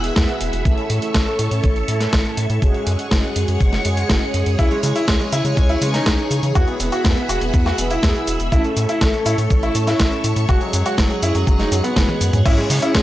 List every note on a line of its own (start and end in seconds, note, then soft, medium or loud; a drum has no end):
0.00 0.11 E1 medium
0.00 0.13 B3 medium
0.00 0.13 E4 medium
0.00 0.13 F#4 medium
0.00 0.13 G#4 loud
0.00 0.61 G#4 medium
0.00 2.58 E5 medium
0.00 0.63 F#5 medium
0.00 0.63 B5 medium
0.00 closed hi-hat medium
0.16 0.26 E2 medium
0.16 0.62 B3 medium
0.16 0.62 E4 medium
0.16 0.62 F#4 medium
0.16 0.62 G#4 loud
0.16 kick loud
0.16 snare loud
0.16 closed hi-hat medium
0.28 closed hi-hat soft
0.41 0.50 E1 medium
0.41 closed hi-hat medium
0.53 0.62 E1 loud
0.53 closed hi-hat medium
0.65 0.75 A1 loud
0.65 1.85 A3 loud
0.65 1.85 C#4 medium
0.65 1.85 E4 medium
0.65 1.85 A4 loud
0.65 2.60 A4 medium
0.65 2.60 C#5 medium
0.65 6.52 C#6 medium
0.65 kick loud
0.65 closed hi-hat medium
0.78 closed hi-hat soft
0.90 0.99 A2 loud
0.90 closed hi-hat medium
1.02 closed hi-hat medium
1.14 1.24 A1 medium
1.14 kick loud
1.14 snare loud
1.14 closed hi-hat medium
1.27 closed hi-hat soft
1.39 1.49 A2 medium
1.39 closed hi-hat loud
1.51 1.61 A2 medium
1.51 closed hi-hat medium
1.64 1.83 A1 medium
1.64 kick loud
1.64 closed hi-hat medium
1.76 closed hi-hat soft
1.88 2.07 A2 medium
1.88 2.59 A3 medium
1.88 2.59 C#4 medium
1.88 2.59 E4 medium
1.88 2.59 A4 medium
1.88 closed hi-hat medium
2.01 snare soft
2.01 closed hi-hat medium
2.13 2.22 A1 medium
2.13 kick loud
2.13 snare loud
2.13 closed hi-hat medium
2.25 closed hi-hat soft
2.37 2.47 A2 medium
2.37 closed hi-hat medium
2.50 2.59 A2 loud
2.50 closed hi-hat medium
2.62 2.72 F#1 medium
2.62 3.82 G#3 medium
2.62 3.82 C#4 medium
2.62 3.82 F#4 medium
2.62 3.82 G#4 loud
2.62 8.48 G#4 medium
2.62 6.52 C#5 medium
2.62 4.57 F#5 medium
2.62 kick loud
2.62 closed hi-hat soft
2.74 closed hi-hat soft
2.87 2.96 F#2 loud
2.87 closed hi-hat medium
2.99 closed hi-hat medium
3.11 3.21 F#1 loud
3.11 kick loud
3.11 snare loud
3.11 closed hi-hat soft
3.23 closed hi-hat soft
3.36 3.45 F#2 medium
3.36 closed hi-hat medium
3.48 3.58 F#2 medium
3.48 closed hi-hat medium
3.60 3.79 F#1 medium
3.60 kick loud
3.60 closed hi-hat soft
3.73 snare soft
3.73 closed hi-hat soft
3.85 4.04 F#2 medium
3.85 4.56 G#3 loud
3.85 4.56 C#4 medium
3.85 4.56 F#4 medium
3.85 4.56 G#4 loud
3.85 closed hi-hat medium
3.97 closed hi-hat medium
4.09 4.19 F#1 medium
4.09 kick loud
4.09 snare loud
4.09 closed hi-hat soft
4.22 closed hi-hat soft
4.34 4.44 F#2 medium
4.34 closed hi-hat medium
4.46 4.56 F#2 loud
4.46 closed hi-hat medium
4.59 4.68 C#2 medium
4.59 5.79 C#4 loud
4.59 5.79 E4 medium
4.59 4.68 E4 medium
4.59 5.79 G#4 medium
4.59 5.79 C#5 loud
4.59 6.54 G#5 medium
4.59 kick loud
4.59 closed hi-hat soft
4.59 cabasa soft
4.71 4.80 G#3 medium
4.71 closed hi-hat soft
4.71 cabasa soft
4.83 4.93 C#3 loud
4.83 4.92 G#3 medium
4.83 closed hi-hat medium
4.83 cabasa medium
4.96 5.05 E4 medium
4.96 closed hi-hat soft
4.96 cabasa soft
5.08 5.17 C#2 loud
5.08 5.17 G#3 medium
5.08 kick loud
5.08 snare loud
5.08 closed hi-hat soft
5.08 cabasa soft
5.20 5.29 G#3 medium
5.20 closed hi-hat soft
5.20 cabasa soft
5.32 5.42 C#3 medium
5.32 5.41 E4 medium
5.32 closed hi-hat medium
5.32 cabasa medium
5.45 5.54 C#3 medium
5.45 5.54 G#3 medium
5.45 closed hi-hat soft
5.45 cabasa soft
5.57 5.76 C#2 medium
5.57 5.66 G#3 medium
5.57 kick loud
5.57 closed hi-hat soft
5.57 cabasa soft
5.69 5.78 E4 medium
5.69 closed hi-hat soft
5.69 cabasa soft
5.81 6.01 C#3 medium
5.81 6.52 E3 medium
5.81 5.91 G#3 medium
5.81 6.52 C#4 medium
5.81 6.52 G#4 medium
5.81 6.52 C#5 medium
5.81 closed hi-hat medium
5.81 cabasa medium
5.94 6.46 D#4 medium
5.94 snare soft
5.94 closed hi-hat soft
5.94 cabasa soft
6.06 6.16 C#2 medium
6.06 kick loud
6.06 snare loud
6.06 closed hi-hat soft
6.06 cabasa soft
6.19 closed hi-hat soft
6.19 cabasa soft
6.31 6.40 C#3 medium
6.31 closed hi-hat medium
6.31 cabasa medium
6.43 6.53 C#3 loud
6.43 closed hi-hat soft
6.43 cabasa soft
6.55 6.65 E2 loud
6.55 7.75 B3 medium
6.55 7.75 E4 medium
6.55 7.75 F#4 medium
6.55 6.64 F#4 loud
6.55 7.75 G#4 loud
6.55 10.45 E5 medium
6.55 8.50 F#5 medium
6.55 8.50 B5 medium
6.55 kick loud
6.55 closed hi-hat soft
6.55 cabasa soft
6.68 6.77 B3 medium
6.68 closed hi-hat soft
6.68 cabasa soft
6.80 6.89 E1 loud
6.80 6.89 B3 medium
6.80 closed hi-hat medium
6.80 cabasa medium
6.92 7.01 F#4 medium
6.92 closed hi-hat soft
6.92 cabasa soft
7.05 7.14 E2 loud
7.05 7.14 B3 medium
7.05 kick loud
7.05 snare loud
7.05 closed hi-hat soft
7.05 cabasa soft
7.17 7.26 B3 medium
7.17 closed hi-hat soft
7.17 cabasa soft
7.29 7.39 E1 medium
7.29 7.38 F#4 medium
7.29 closed hi-hat medium
7.29 cabasa medium
7.41 7.51 E1 medium
7.41 7.50 B3 medium
7.41 closed hi-hat soft
7.41 cabasa soft
7.54 7.73 E2 medium
7.54 7.63 B3 medium
7.54 kick loud
7.54 closed hi-hat soft
7.54 cabasa soft
7.66 7.75 F#4 medium
7.66 snare soft
7.66 closed hi-hat soft
7.66 cabasa soft
7.78 7.97 E1 medium
7.78 8.00 B3 medium
7.78 7.87 B3 medium
7.78 8.00 E4 medium
7.78 8.00 F#4 medium
7.78 8.00 G#4 loud
7.78 closed hi-hat medium
7.78 cabasa medium
7.91 8.42 E4 medium
7.91 closed hi-hat medium
7.91 cabasa soft
8.03 8.12 E2 medium
8.03 8.49 B3 medium
8.03 8.49 E4 medium
8.03 8.49 F#4 medium
8.03 8.49 G#4 loud
8.03 kick loud
8.03 snare loud
8.03 closed hi-hat soft
8.03 cabasa soft
8.15 closed hi-hat soft
8.15 cabasa soft
8.27 8.37 E1 medium
8.27 closed hi-hat medium
8.27 cabasa medium
8.40 8.49 E1 loud
8.40 closed hi-hat soft
8.40 cabasa soft
8.52 8.62 A1 loud
8.52 9.72 A3 loud
8.52 9.72 C#4 medium
8.52 8.61 E4 loud
8.52 9.72 E4 medium
8.52 10.47 A4 medium
8.52 9.72 A4 loud
8.52 12.42 C#5 medium
8.52 12.42 C#6 medium
8.52 kick loud
8.52 closed hi-hat soft
8.52 cabasa soft
8.64 8.73 A3 medium
8.64 closed hi-hat soft
8.64 cabasa soft
8.77 8.86 A2 loud
8.77 8.86 A3 medium
8.77 closed hi-hat medium
8.77 cabasa medium
8.89 8.98 E4 medium
8.89 closed hi-hat medium
8.89 cabasa soft
9.01 9.11 A1 loud
9.01 9.10 A3 medium
9.01 kick loud
9.01 snare loud
9.01 closed hi-hat soft
9.01 cabasa soft
9.14 9.22 A3 medium
9.14 closed hi-hat soft
9.14 cabasa soft
9.26 9.35 A2 medium
9.26 9.35 E4 medium
9.26 closed hi-hat medium
9.26 cabasa medium
9.38 9.48 A2 medium
9.38 9.47 A3 medium
9.38 closed hi-hat medium
9.38 cabasa soft
9.50 9.70 A1 medium
9.50 9.60 A3 medium
9.50 kick loud
9.50 closed hi-hat soft
9.50 cabasa soft
9.63 9.72 E4 medium
9.63 closed hi-hat soft
9.63 cabasa soft
9.75 9.94 A2 medium
9.75 10.46 A3 medium
9.75 9.84 A3 medium
9.75 10.46 C#4 medium
9.75 10.46 E4 medium
9.75 10.46 A4 loud
9.75 closed hi-hat medium
9.75 cabasa medium
9.87 10.39 E4 medium
9.87 snare soft
9.87 closed hi-hat soft
9.87 cabasa soft
10.00 10.09 A1 medium
10.00 kick loud
10.00 snare loud
10.00 closed hi-hat medium
10.00 cabasa soft
10.12 closed hi-hat soft
10.12 cabasa soft
10.24 10.34 A2 medium
10.24 closed hi-hat medium
10.24 cabasa medium
10.36 10.46 A2 loud
10.36 closed hi-hat soft
10.36 cabasa soft
10.49 10.58 F#1 medium
10.49 11.69 G#3 medium
10.49 11.69 C#4 medium
10.49 11.69 F#4 medium
10.49 10.58 F#4 loud
10.49 12.44 G#4 medium
10.49 11.69 G#4 loud
10.49 12.44 F#5 medium
10.49 kick loud
10.49 closed hi-hat medium
10.49 cabasa soft
10.61 10.70 F#3 medium
10.61 closed hi-hat soft
10.61 cabasa soft
10.73 10.83 F#2 loud
10.73 10.82 F#3 medium
10.73 closed hi-hat medium
10.73 cabasa medium
10.86 10.95 F#4 medium
10.86 closed hi-hat medium
10.86 cabasa soft
10.98 11.08 F#1 loud
10.98 11.07 F#3 medium
10.98 kick loud
10.98 snare loud
10.98 closed hi-hat medium
10.98 cabasa soft
11.10 11.19 F#3 medium
11.10 closed hi-hat soft
11.10 cabasa soft
11.22 11.32 F#2 medium
11.22 11.32 E4 medium
11.22 closed hi-hat medium
11.22 cabasa medium
11.35 11.44 F#2 medium
11.35 11.44 F#3 medium
11.35 closed hi-hat medium
11.35 cabasa soft
11.47 11.66 F#1 loud
11.47 11.56 F#3 medium
11.47 kick loud
11.47 closed hi-hat medium
11.47 cabasa soft
11.59 11.68 D#4 medium
11.59 snare soft
11.59 closed hi-hat soft
11.59 cabasa soft
11.72 11.81 F#2 loud
11.72 11.81 F#3 medium
11.72 12.43 G#3 loud
11.72 12.43 C#4 medium
11.72 12.43 F#4 medium
11.72 12.43 G#4 loud
11.72 closed hi-hat loud
11.72 cabasa medium
11.84 12.36 B3 medium
11.84 closed hi-hat medium
11.84 cabasa soft
11.96 12.06 F#1 loud
11.96 kick loud
11.96 snare loud
11.96 closed hi-hat medium
11.96 high tom medium
11.96 cabasa soft
12.09 closed hi-hat soft
12.09 high tom medium
12.09 cabasa soft
12.21 12.30 F#2 loud
12.21 closed hi-hat medium
12.21 cabasa medium
12.33 12.43 F#2 medium
12.33 closed hi-hat medium
12.33 mid tom medium
12.33 cabasa soft
12.45 12.55 C#2 loud
12.45 12.54 C#4 medium
12.45 13.03 C#4 loud
12.45 12.54 E4 loud
12.45 13.03 E4 medium
12.45 13.03 G#4 medium
12.45 13.03 C#5 loud
12.45 13.03 C#5 medium
12.45 13.03 G#5 medium
12.45 13.03 C#6 medium
12.45 kick loud
12.45 closed hi-hat medium
12.45 crash loud
12.45 cabasa soft
12.58 12.67 G#3 medium
12.58 closed hi-hat soft
12.70 12.80 C#3 loud
12.70 12.79 G#3 medium
12.70 open hi-hat loud
12.70 cabasa medium
12.82 12.91 C#4 medium
12.82 12.91 E4 loud
12.82 closed hi-hat medium
12.82 cabasa soft
12.95 13.03 C#2 loud
12.95 13.03 G#3 medium
12.95 kick loud
12.95 snare loud
12.95 closed hi-hat medium
12.95 cabasa soft